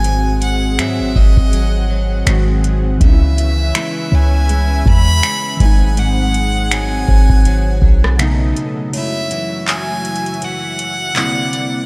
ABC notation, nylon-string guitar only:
X:1
M:4/4
L:1/8
Q:"Swing 16ths" 1/4=81
K:G#phr
V:1 name="Nylon-string guitar" clef=bass
G,,2 [F,^B,] B, F, F, G,,2 | C,2 [G,B,E] B, G, G,2 G,, | G,,2 [F,^B,D] B, F, F, =B,,2 | F,, E, A,2 E,2 =C,2 |]